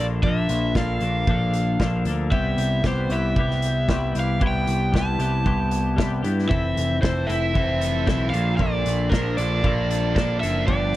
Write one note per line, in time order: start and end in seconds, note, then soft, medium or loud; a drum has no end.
0.00 0.21 A#1 medium
0.00 0.23 F3 medium
0.00 0.25 A#3 medium
0.00 0.25 D4 medium
0.00 0.26 A4 medium
0.23 0.48 A#1 medium
0.23 0.75 F3 medium
0.23 0.76 A#3 medium
0.23 0.77 D4 medium
0.23 0.76 E5 medium
0.23 kick medium
0.28 0.78 A4 medium
0.49 0.74 A#1 medium
0.49 closed hi-hat medium
0.75 1.00 A#1 medium
0.75 1.26 F3 medium
0.75 1.03 A#3 medium
0.75 1.02 D4 medium
0.75 2.03 F5 medium
0.75 kick medium
0.75 snare medium
0.79 1.00 A4 medium
1.00 1.26 A#1 medium
1.00 1.27 A#3 medium
1.00 1.28 D4 medium
1.00 1.29 A4 medium
1.00 closed hi-hat medium
1.27 1.77 A#1 medium
1.27 1.78 F3 medium
1.27 1.80 A#3 medium
1.27 1.81 D4 medium
1.27 1.81 A4 medium
1.27 kick medium
1.54 closed hi-hat medium
1.80 2.04 A#1 medium
1.80 2.31 F3 medium
1.80 2.08 A#3 medium
1.80 2.06 D4 medium
1.80 2.05 A4 medium
1.80 kick medium
1.80 snare medium
2.05 2.30 D2 medium
2.05 2.32 A#3 medium
2.05 2.31 D4 medium
2.05 2.31 A4 medium
2.05 closed hi-hat medium
2.31 2.57 C2 medium
2.31 2.83 G3 medium
2.31 2.85 B3 medium
2.31 2.86 E4 medium
2.31 2.87 G4 medium
2.31 2.86 E5 medium
2.31 kick medium
2.57 2.82 C2 medium
2.57 closed hi-hat medium
2.83 3.09 C2 medium
2.83 3.38 G3 medium
2.83 3.14 B3 medium
2.83 3.12 E4 medium
2.83 3.11 G4 medium
2.83 3.12 C5 medium
2.83 kick medium
2.83 snare medium
3.10 3.35 C2 medium
3.10 3.39 E4 medium
3.10 3.39 G4 medium
3.10 4.19 E5 medium
3.10 closed hi-hat medium
3.14 3.38 B3 soft
3.36 3.86 C2 medium
3.36 3.87 G3 medium
3.36 3.88 B3 medium
3.36 3.90 E4 medium
3.36 kick medium
3.41 3.90 G4 medium
3.51 snare soft
3.62 closed hi-hat medium
3.88 4.14 C2 medium
3.88 4.39 G3 medium
3.88 4.17 B3 medium
3.88 4.16 E4 medium
3.88 4.14 G4 medium
3.88 kick medium
3.88 snare medium
4.15 4.40 C2 medium
4.15 4.40 B3 soft
4.15 4.42 E4 soft
4.15 4.41 G4 medium
4.15 closed hi-hat medium
4.20 4.42 F5 medium
4.40 4.66 C2 medium
4.40 4.91 G3 medium
4.40 4.92 B3 medium
4.40 4.95 E4 medium
4.40 4.94 G4 medium
4.40 kick loud
4.47 4.97 G5 medium
4.67 4.92 C2 medium
4.67 closed hi-hat medium
4.92 5.18 C2 medium
4.92 5.43 G3 medium
4.92 5.21 B3 medium
4.92 5.19 E4 medium
4.92 5.18 G4 medium
4.92 kick medium
4.92 snare medium
4.97 6.22 A5 medium
5.19 5.44 C2 medium
5.19 5.45 B3 soft
5.19 5.45 E4 medium
5.19 5.46 G4 medium
5.19 closed hi-hat medium
5.44 5.95 C2 medium
5.44 5.95 G3 medium
5.44 5.96 B3 medium
5.44 5.97 E4 medium
5.44 5.98 G4 medium
5.44 kick medium
5.71 closed hi-hat medium
5.96 6.23 C2 medium
5.96 6.48 G3 medium
5.96 6.24 B3 medium
5.96 6.23 E4 medium
5.96 6.21 G4 medium
5.96 kick medium
5.96 snare medium
6.23 6.49 G2 medium
6.23 6.49 B3 soft
6.23 6.49 E4 medium
6.23 6.48 G4 medium
6.23 closed hi-hat medium
6.39 snare soft
6.48 6.75 F1 medium
6.48 6.99 E3 medium
6.48 7.00 C4 medium
6.48 7.01 E4 medium
6.48 7.03 A4 medium
6.48 6.98 E5 medium
6.48 kick medium
6.77 7.01 F1 medium
6.77 closed hi-hat medium
7.01 7.27 F1 medium
7.01 7.52 E3 medium
7.01 7.29 C4 medium
7.01 7.27 E4 medium
7.01 7.27 A4 medium
7.01 7.29 C5 medium
7.01 kick medium
7.01 snare medium
7.27 7.53 F1 medium
7.27 7.54 C4 medium
7.27 7.54 E4 medium
7.27 7.55 A4 medium
7.27 8.29 E5 medium
7.27 closed hi-hat medium
7.54 8.04 F1 medium
7.54 8.05 E3 medium
7.54 8.05 C4 medium
7.54 8.06 E4 medium
7.54 8.08 A4 medium
7.54 kick medium
7.81 8.33 A4 medium
7.81 closed hi-hat medium
8.06 8.32 B1 medium
8.06 8.31 E3 medium
8.06 8.31 C4 medium
8.06 8.32 E4 medium
8.06 8.31 A4 medium
8.06 kick medium
8.06 snare medium
8.30 8.58 A#2 medium
8.30 8.59 D4 medium
8.30 8.60 A4 medium
8.30 8.56 F5 medium
8.30 closed hi-hat medium
8.34 8.58 A#1 medium
8.34 8.58 F3 medium
8.34 8.58 A#3 medium
8.57 8.84 A#1 medium
8.57 9.90 A#2 medium
8.57 9.11 F3 medium
8.57 9.11 A#3 medium
8.57 9.12 D4 medium
8.57 9.12 D5 medium
8.57 kick medium
8.61 9.13 A4 medium
8.86 9.10 A#1 medium
8.86 closed hi-hat medium
9.10 9.36 A#1 medium
9.10 9.63 F3 medium
9.10 9.38 A#3 medium
9.10 9.38 D4 medium
9.10 9.35 A#4 medium
9.10 kick medium
9.10 snare medium
9.14 9.36 A4 medium
9.37 9.62 A#1 medium
9.37 9.63 A#3 soft
9.37 9.65 D4 medium
9.37 9.65 A4 medium
9.37 10.40 D5 medium
9.37 closed hi-hat medium
9.63 10.13 A#1 medium
9.63 10.14 F3 medium
9.63 10.14 A#3 medium
9.63 10.16 D4 medium
9.63 10.16 A4 medium
9.63 kick medium
9.88 10.41 A4 medium
9.88 closed hi-hat medium
10.14 10.41 A#1 medium
10.14 10.67 F3 medium
10.14 10.44 A#3 medium
10.14 10.43 D4 medium
10.14 10.40 A4 medium
10.14 kick medium
10.14 snare medium
10.40 10.67 F#1 medium
10.40 10.69 D4 medium
10.40 10.66 A4 medium
10.40 10.67 E5 medium
10.40 closed hi-hat medium
10.45 10.68 A#3 soft
10.67 10.93 G1 medium
10.67 10.96 G2 medium
10.67 10.96 F3 medium
10.67 10.96 B3 medium
10.67 10.96 D4 medium
10.67 10.96 G4 medium
10.67 10.96 D5 medium
10.67 kick medium